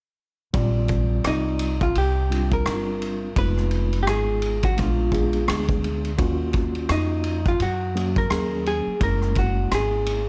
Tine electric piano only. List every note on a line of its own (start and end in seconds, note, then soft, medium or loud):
0.54 1.74 G3 medium
0.54 1.75 C4 medium
0.54 1.75 F4 medium
0.54 1.75 D5 medium
2.30 2.61 G3 medium
2.30 2.61 C4 medium
2.30 2.61 D4 medium
2.30 2.61 F4 medium
2.66 3.27 G3 medium
2.66 3.27 C4 medium
2.66 3.27 D4 medium
2.66 2.74 D#4 medium
2.73 3.31 F4 medium
3.36 4.57 G#3 medium
3.36 4.57 B3 medium
3.36 4.57 D#4 medium
3.36 4.57 F4 medium
4.77 5.08 G#3 medium
4.77 5.08 B3 medium
4.77 5.08 D4 medium
4.77 5.08 F4 medium
5.12 5.43 G#3 medium
5.12 5.43 B3 medium
5.12 5.44 D4 medium
5.12 5.44 G#4 medium
5.48 6.09 G#3 medium
5.48 6.09 B3 medium
5.48 6.09 D4 medium
5.48 6.09 G#4 medium
6.18 7.39 A#3 medium
6.18 7.39 C#4 medium
6.18 7.39 F4 medium
6.18 7.39 F#4 medium
7.95 8.25 F#3 medium
7.95 8.26 A#3 medium
7.95 8.26 C#4 medium
7.95 8.26 F#4 medium
8.30 8.91 F#3 medium
8.30 8.91 A#3 medium
8.30 8.92 C#4 medium
8.30 8.92 G#4 medium
9.00 10.21 G#3 medium
9.00 10.21 A#3 medium
9.00 10.21 C#4 medium
9.00 10.22 E4 medium